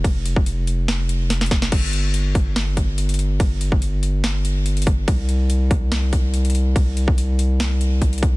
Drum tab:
CC |--------------------------------|x-------------------------------|--------------------------------|--------------------------------|
RD |x---------------x---------------|x---------------x---------------|x---------------x---------------|x---------------x---------------|
HH |x---x---x---x---x---x---x-xxx---|x---x---x---x---x---x---x-xxx---|x---x---x---x---x---x---x-xxx---|x---x---x---x---x---x---x-xxx---|
SD |----------------o-------o-o-o-o-|----------------o---------------|----------------o---------------|----------------o---------------|
BD |o-----o---------------------o---|o-----------o-------o-----------|o-----o---------------------o---|o-----------o-------o-----------|

CC |--------------------------------|
RD |x---------------x---------------|
HH |x---x---x---x---x---x---x-xxx---|
SD |----------------o---------------|
BD |o-----o-----------------o---o---|